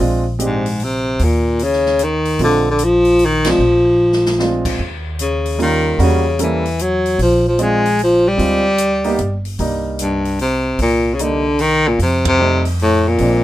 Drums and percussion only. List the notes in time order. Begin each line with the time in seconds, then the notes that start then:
0.40 closed hi-hat
0.66 open hi-hat
0.80 open hi-hat
1.19 kick, open hi-hat
1.59 open hi-hat
1.73 snare
1.86 snare
1.99 closed hi-hat
2.25 open hi-hat
2.39 kick, open hi-hat
2.79 closed hi-hat
3.05 open hi-hat
3.19 open hi-hat
3.45 snare, ride
4.12 snare
4.26 snare
4.39 snare
4.65 kick, crash
4.79 kick
5.19 closed hi-hat
5.46 open hi-hat
5.60 open hi-hat
5.99 kick, open hi-hat
6.39 closed hi-hat
6.65 open hi-hat
6.79 closed hi-hat
7.06 open hi-hat
7.19 kick, open hi-hat
7.59 closed hi-hat
7.86 open hi-hat
7.99 open hi-hat
8.39 kick, open hi-hat
8.78 closed hi-hat
9.04 open hi-hat
9.19 closed hi-hat
9.45 open hi-hat
9.59 kick, open hi-hat
9.99 closed hi-hat
10.25 open hi-hat
10.39 open hi-hat
10.79 kick, open hi-hat
11.19 closed hi-hat
11.59 open hi-hat
11.99 kick, open hi-hat
12.25 kick, ride
12.65 open hi-hat
12.80 open hi-hat
13.18 kick, open hi-hat